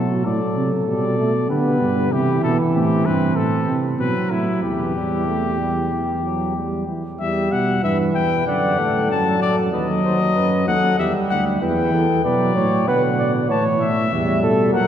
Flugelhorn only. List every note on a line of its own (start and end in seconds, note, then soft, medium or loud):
0.00 0.24 F#4 medium
0.26 1.51 A4 medium
1.50 2.12 G4 medium
2.13 2.74 E4 medium
2.75 4.32 C4 medium
4.63 6.84 G4 medium
7.20 7.79 G4 medium
7.83 8.45 B4 medium
8.47 8.80 D5 medium
8.79 9.72 A4 medium
9.73 9.87 B4 medium
10.04 10.19 C5 medium
10.35 10.66 B4 medium
10.68 11.00 A4 medium
10.98 11.61 G4 medium
11.61 11.92 B4 medium
11.93 12.24 A4 medium
12.25 12.55 B4 medium
12.56 12.87 C#5 loud
12.88 13.02 B4 loud
13.18 13.32 D5 medium
13.50 13.89 C#5 loud
14.12 14.40 E5 loud
14.42 14.73 A4 loud
14.73 14.87 A#4 loud